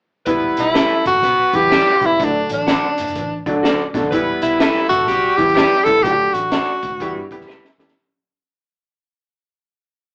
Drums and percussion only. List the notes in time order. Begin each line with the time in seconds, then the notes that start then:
0.26 kick, closed hi-hat
0.57 closed hi-hat
0.75 snare, closed hi-hat
1.06 kick, closed hi-hat
1.23 kick, closed hi-hat
1.53 kick, closed hi-hat
1.72 snare, closed hi-hat
2.01 kick, closed hi-hat
2.20 kick, closed hi-hat
2.49 closed hi-hat
2.68 snare, closed hi-hat
2.98 closed hi-hat
3.08 closed hi-hat
3.15 kick, closed hi-hat
3.46 kick, closed hi-hat
3.65 snare, closed hi-hat
3.94 kick, snare, closed hi-hat
4.12 kick, closed hi-hat
4.42 closed hi-hat
4.60 snare, closed hi-hat
4.90 kick, closed hi-hat
5.08 kick, closed hi-hat
5.38 kick, closed hi-hat
5.49 closed hi-hat
5.57 snare, closed hi-hat
5.86 kick, snare, closed hi-hat
6.04 kick, closed hi-hat
6.34 closed hi-hat
6.52 snare, closed hi-hat
6.83 kick, closed hi-hat
7.00 kick, closed hi-hat
7.31 kick, closed hi-hat
7.41 snare
7.50 snare
7.65 snare
7.79 snare
7.88 snare